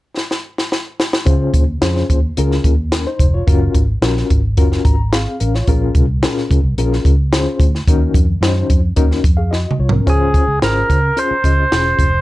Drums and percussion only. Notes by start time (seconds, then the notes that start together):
0.17 snare
0.31 snare
0.58 snare
0.72 snare
1.00 snare
1.13 snare
1.27 kick, closed hi-hat
1.54 kick, closed hi-hat
1.82 snare, closed hi-hat
1.97 snare
2.10 kick, closed hi-hat
2.37 closed hi-hat
2.51 snare
2.64 kick, closed hi-hat
2.92 snare, closed hi-hat
3.19 kick, closed hi-hat
3.48 kick, closed hi-hat
3.75 kick, closed hi-hat
4.02 snare, closed hi-hat
4.17 snare
4.30 kick, closed hi-hat
4.57 kick, closed hi-hat
4.72 snare
4.85 kick, closed hi-hat
5.13 snare, closed hi-hat
5.40 closed hi-hat
5.55 snare
5.67 kick, closed hi-hat
5.95 kick, closed hi-hat
6.23 snare, closed hi-hat
6.38 snare
6.51 kick, closed hi-hat
6.78 closed hi-hat
6.93 snare
7.05 kick, closed hi-hat
7.33 snare, closed hi-hat
7.60 kick, closed hi-hat
7.75 snare
7.88 kick, closed hi-hat
8.14 kick, closed hi-hat
8.43 snare, closed hi-hat
8.70 kick, closed hi-hat
8.96 kick, closed hi-hat
9.11 snare
9.24 kick, closed hi-hat
9.53 snare
9.71 mid tom
9.89 floor tom
10.07 kick, closed hi-hat
10.34 kick, closed hi-hat
10.62 snare, closed hi-hat
10.90 kick, closed hi-hat
11.17 closed hi-hat
11.44 kick, closed hi-hat
11.72 snare, closed hi-hat
11.99 kick, closed hi-hat